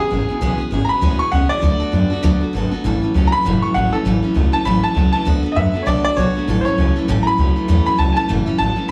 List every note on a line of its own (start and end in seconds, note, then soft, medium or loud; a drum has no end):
0.00 0.10 B3 soft
0.00 0.11 C#4 medium
0.00 0.10 G#4 medium
0.00 0.57 G#4 loud
0.10 0.24 G#1 medium
0.10 0.27 E2 medium
0.10 0.27 C#3 loud
0.10 0.29 G#3 medium
0.10 0.29 B3 medium
0.10 0.29 C#4 medium
0.10 0.27 G#4 medium
0.28 0.40 E2 medium
0.28 0.40 B2 medium
0.28 0.41 B3 soft
0.28 0.41 C#4 medium
0.28 0.41 G#4 medium
0.28 muted upright bass stroke medium
0.41 0.54 B1 loud
0.41 0.69 E2 medium
0.41 0.70 B2 medium
0.41 0.59 E3 medium
0.41 0.60 G#3 medium
0.41 0.60 B3 loud
0.41 0.58 C#4 loud
0.41 0.57 G#4 loud
0.58 0.71 B3 medium
0.58 0.72 C#4 soft
0.58 0.71 G#4 medium
0.58 muted upright bass stroke medium
0.71 0.84 G#1 loud
0.71 0.88 E2 medium
0.71 0.88 C#3 loud
0.71 0.89 G#3 medium
0.71 0.90 B3 medium
0.71 0.89 C#4 medium
0.71 0.87 G#4 medium
0.85 1.01 G#4 medium
0.85 0.87 A#5 medium
0.89 1.01 E2 medium
0.89 1.01 B2 medium
0.89 1.01 B3 soft
0.89 1.02 C#4 medium
0.89 1.19 B5 loud
0.89 muted upright bass stroke medium
1.01 1.14 D2 loud
1.01 1.30 E2 medium
1.01 1.30 B2 medium
1.01 1.20 E3 medium
1.01 1.20 G#3 medium
1.01 1.20 B3 medium
1.01 1.20 C#4 loud
1.01 1.18 G#4 medium
1.19 1.32 B3 soft
1.19 1.33 C#4 soft
1.19 1.32 G#4 medium
1.19 1.32 C#6 loud
1.19 muted upright bass stroke medium
1.32 1.45 C#2 medium
1.32 1.49 E2 medium
1.32 1.49 C#3 medium
1.32 1.50 G#3 medium
1.32 1.51 B3 medium
1.32 1.50 C#4 medium
1.32 1.48 G#4 medium
1.32 1.49 F#5 loud
1.49 1.61 E2 medium
1.49 1.62 B2 medium
1.49 1.62 B3 soft
1.49 1.63 C#4 soft
1.49 1.62 G#4 medium
1.49 2.38 D5 loud
1.49 muted upright bass stroke medium
1.62 1.75 D2 loud
1.62 1.80 D3 medium
1.62 1.91 D3 medium
1.62 1.81 F#3 medium
1.62 1.91 A3 medium
1.62 1.81 B3 medium
1.62 1.80 F#4 medium
1.62 1.79 A4 medium
1.80 1.92 B3 soft
1.80 1.93 F#4 medium
1.80 1.93 A4 medium
1.80 muted upright bass stroke medium
1.92 2.05 F#2 medium
1.92 2.09 D3 medium
1.92 2.11 F#3 medium
1.92 2.11 B3 medium
1.92 2.10 B3 medium
1.92 2.10 F#4 medium
1.92 2.09 A4 medium
2.10 2.23 D3 medium
2.10 2.23 A3 medium
2.10 2.22 B3 soft
2.10 2.23 F#4 medium
2.10 2.23 A4 medium
2.10 muted upright bass stroke medium
2.23 2.36 D2 loud
2.23 2.41 D3 loud
2.23 2.52 D3 medium
2.23 2.41 F#3 loud
2.23 2.52 A3 medium
2.23 2.42 B3 loud
2.23 2.42 F#4 loud
2.23 2.40 A4 loud
2.41 2.53 B3 soft
2.41 2.54 F#4 medium
2.41 2.53 A4 medium
2.53 2.66 G#1 medium
2.53 2.70 D3 medium
2.53 2.71 F#3 medium
2.53 2.70 B3 loud
2.53 2.72 B3 medium
2.53 2.72 F#4 medium
2.53 2.70 A4 medium
2.71 2.83 D3 medium
2.71 2.83 A3 medium
2.71 2.85 B3 medium
2.71 2.85 F#4 medium
2.71 2.84 A4 medium
2.71 muted upright bass stroke medium
2.84 2.97 A1 medium
2.84 3.02 A2 medium
2.84 3.12 A2 medium
2.84 3.12 E3 medium
2.84 3.02 E3 medium
2.84 3.03 F#3 medium
2.84 3.03 A3 medium
2.84 3.02 C#4 loud
2.84 3.01 A4 medium
3.02 3.13 F#3 medium
3.02 3.14 A3 medium
3.02 3.15 C#4 medium
3.02 3.14 A4 medium
3.02 muted upright bass stroke medium
3.14 3.27 C#2 loud
3.14 3.31 A2 loud
3.14 3.32 F#3 medium
3.14 3.31 F#3 medium
3.14 3.33 A3 medium
3.14 3.32 C#4 medium
3.14 3.31 A4 medium
3.27 3.30 A#5 medium
3.32 3.44 A2 medium
3.32 3.44 E3 medium
3.32 3.45 F#3 soft
3.32 3.45 A3 soft
3.32 3.45 C#4 medium
3.32 3.45 A4 medium
3.32 3.62 B5 loud
3.45 3.57 F#1 loud
3.45 3.73 A2 medium
3.45 3.63 A2 medium
3.45 3.73 E3 medium
3.45 3.63 E3 medium
3.45 3.63 F#3 medium
3.45 3.64 A3 medium
3.45 3.62 C#4 medium
3.45 3.61 A4 loud
3.62 3.73 F#3 medium
3.62 3.75 A3 soft
3.62 3.76 C#4 medium
3.62 3.75 A4 medium
3.62 3.75 C#6 medium
3.74 3.88 A1 medium
3.74 3.91 A2 medium
3.74 3.93 F#3 medium
3.74 3.92 F#3 loud
3.74 3.94 A3 medium
3.74 3.93 C#4 medium
3.74 3.91 A4 medium
3.74 3.92 F#5 loud
3.93 4.04 A2 medium
3.93 4.04 E3 medium
3.93 4.05 F#3 soft
3.93 4.05 A3 soft
3.93 4.06 C#4 medium
3.93 4.05 A4 medium
3.93 muted upright bass stroke medium
4.05 4.18 A1 medium
4.05 4.23 A2 medium
4.05 4.33 A2 medium
4.05 4.33 E3 medium
4.05 4.24 E3 medium
4.05 4.24 F#3 medium
4.05 4.23 A3 medium
4.05 4.23 C#4 medium
4.05 4.21 A4 medium
4.22 4.33 F#3 medium
4.22 4.34 A3 medium
4.22 4.36 C#4 medium
4.22 4.35 A4 medium
4.22 muted upright bass stroke medium
4.34 4.48 C#2 loud
4.34 4.52 A2 medium
4.34 4.53 F#3 medium
4.34 4.52 F#3 loud
4.34 4.53 A3 medium
4.34 4.52 C#4 medium
4.34 4.51 A4 medium
4.52 4.64 A2 medium
4.52 4.65 E3 medium
4.52 4.65 F#3 soft
4.52 4.65 A3 soft
4.52 4.66 C#4 medium
4.52 4.65 A4 medium
4.52 4.65 A5 loud
4.52 muted upright bass stroke medium
4.65 4.78 A1 loud
4.65 4.84 A2 medium
4.65 4.94 A2 medium
4.65 4.84 E3 medium
4.65 4.94 E3 medium
4.65 4.84 F#3 medium
4.65 4.84 A3 medium
4.65 4.83 C#4 medium
4.65 4.82 A4 loud
4.65 4.83 B5 medium
4.83 4.93 F#3 soft
4.83 4.95 A3 soft
4.83 4.96 C#4 medium
4.83 4.96 A4 medium
4.83 5.11 A5 medium
4.83 muted upright bass stroke medium
4.95 5.08 C#2 medium
4.95 5.12 A2 loud
4.95 5.13 F#3 medium
4.95 5.13 F#3 loud
4.95 5.14 A3 medium
4.95 5.13 C#4 medium
4.95 5.12 A4 medium
5.12 5.25 A2 medium
5.12 5.26 E3 loud
5.12 5.24 F#3 soft
5.12 5.26 A3 medium
5.12 5.26 C#4 medium
5.12 5.26 A4 medium
5.12 5.25 A5 medium
5.12 muted upright bass stroke medium
5.25 5.39 D2 loud
5.25 5.44 D3 medium
5.25 5.54 D3 medium
5.25 5.44 F#3 medium
5.25 5.55 A3 medium
5.25 5.44 B3 medium
5.25 5.43 F#4 medium
5.25 5.41 A4 loud
5.43 5.55 B3 medium
5.43 5.57 F#4 medium
5.43 5.56 A4 medium
5.43 muted upright bass stroke medium
5.52 5.74 F#3 medium
5.52 5.55 D#5 medium
5.56 5.69 F#2 medium
5.56 5.73 D3 medium
5.56 5.75 B3 medium
5.56 5.74 B3 loud
5.56 5.74 F#4 medium
5.56 5.72 A4 medium
5.56 5.86 E5 loud
5.74 5.86 D3 medium
5.74 5.86 A3 medium
5.74 5.86 B3 soft
5.74 5.87 F#4 medium
5.74 5.87 A4 medium
5.74 muted upright bass stroke medium
5.83 6.05 D3 medium
5.83 5.85 C#5 medium
5.87 5.99 B1 loud
5.87 6.15 D3 medium
5.87 6.05 F#3 medium
5.87 6.15 A3 medium
5.87 6.05 B3 medium
5.87 6.05 F#4 medium
5.87 6.03 A4 medium
5.87 6.03 D5 medium
6.04 6.17 B3 soft
6.04 6.18 F#4 medium
6.04 6.17 A4 medium
6.04 6.17 D5 loud
6.04 muted upright bass stroke medium
6.17 6.30 B1 medium
6.17 6.34 D3 medium
6.17 6.35 F#3 medium
6.17 6.34 B3 loud
6.17 6.36 B3 medium
6.17 6.36 F#4 medium
6.17 6.34 A4 medium
6.17 6.63 C#5 loud
6.35 6.46 D3 medium
6.35 6.47 A3 medium
6.35 6.49 B3 soft
6.35 6.48 F#4 soft
6.35 6.48 A4 medium
6.35 muted upright bass stroke medium
6.47 6.60 A1 medium
6.47 6.75 A2 medium
6.47 6.66 A2 medium
6.47 6.76 E3 medium
6.47 6.66 E3 medium
6.47 6.66 F#3 medium
6.47 6.67 A3 medium
6.47 6.66 C#4 medium
6.47 6.65 A4 loud
6.61 6.63 C5 medium
6.65 6.78 A3 medium
6.65 6.79 C#4 medium
6.65 6.78 A4 medium
6.65 6.95 C#5 loud
6.65 muted upright bass stroke medium
6.69 6.77 F#3 soft
6.78 6.90 C#2 loud
6.78 6.94 A2 medium
6.78 6.96 F#3 medium
6.78 6.94 F#3 loud
6.78 6.96 A3 medium
6.78 6.95 C#4 medium
6.78 6.94 A4 medium
6.96 7.07 A2 medium
6.96 7.07 E3 medium
6.96 7.08 F#3 soft
6.96 7.08 A3 soft
6.96 7.09 C#4 medium
6.96 7.08 A4 medium
7.08 7.21 A1 loud
7.08 7.36 A2 medium
7.08 7.26 A2 loud
7.08 7.36 E3 medium
7.08 7.26 E3 loud
7.08 7.27 F#3 loud
7.08 7.27 A3 loud
7.08 7.26 C#4 loud
7.08 7.25 A4 loud
7.23 7.38 A4 medium
7.23 7.25 A#5 medium
7.23 muted upright bass stroke medium
7.27 7.37 F#3 soft
7.27 7.38 A3 medium
7.27 7.39 C#4 medium
7.27 7.85 B5 loud
7.38 7.51 C#2 medium
7.38 7.55 A2 medium
7.38 7.56 F#3 medium
7.38 7.55 F#3 loud
7.38 7.57 A3 medium
7.38 7.56 C#4 medium
7.38 7.55 A4 medium
7.56 7.67 A2 medium
7.56 7.67 E3 loud
7.56 7.68 F#3 soft
7.56 7.68 A3 soft
7.56 7.69 C#4 medium
7.56 7.69 A4 medium
7.56 muted upright bass stroke medium
7.68 7.81 E2 medium
7.68 7.96 A2 medium
7.68 7.86 A2 medium
7.68 7.96 E3 medium
7.68 7.87 E3 medium
7.68 7.87 F#3 loud
7.68 7.87 A3 loud
7.68 7.86 C#4 medium
7.68 7.84 A4 medium
7.86 7.97 F#3 soft
7.86 7.98 A3 medium
7.86 7.99 C#4 soft
7.86 7.99 A4 medium
7.86 7.99 B5 loud
7.86 muted upright bass stroke medium
7.98 8.11 C#2 loud
7.98 8.15 A2 medium
7.98 8.16 F#3 medium
7.98 8.15 F#3 loud
7.98 8.17 A3 medium
7.98 8.16 C#4 medium
7.98 8.15 A4 medium
7.98 8.15 A5 medium
8.12 8.27 A2 medium
8.12 8.29 A4 medium
8.12 8.15 G#5 medium
8.17 8.28 E3 medium
8.17 8.28 F#3 soft
8.17 8.28 A3 soft
8.17 8.29 C#4 medium
8.17 8.29 A5 loud
8.28 8.42 F#1 loud
8.28 8.57 A2 medium
8.28 8.47 A2 medium
8.28 8.57 E3 medium
8.28 8.47 E3 medium
8.28 8.47 F#3 medium
8.28 8.47 A3 medium
8.28 8.46 C#4 loud
8.28 8.45 A4 medium
8.46 8.57 F#3 medium
8.46 8.59 A3 medium
8.46 8.59 C#4 medium
8.46 8.59 A4 medium
8.46 muted upright bass stroke medium
8.58 8.72 A1 medium
8.58 8.75 A2 medium
8.58 8.77 F#3 medium
8.58 8.76 F#3 loud
8.58 8.77 A3 medium
8.58 8.76 C#4 medium
8.58 8.75 A4 medium
8.58 8.88 A5 loud
8.76 8.88 A2 medium
8.76 8.88 E3 medium
8.76 8.87 F#3 soft
8.76 8.88 A3 medium
8.76 8.89 C#4 medium
8.76 8.89 A4 medium
8.76 muted upright bass stroke medium
8.88 8.91 D3 medium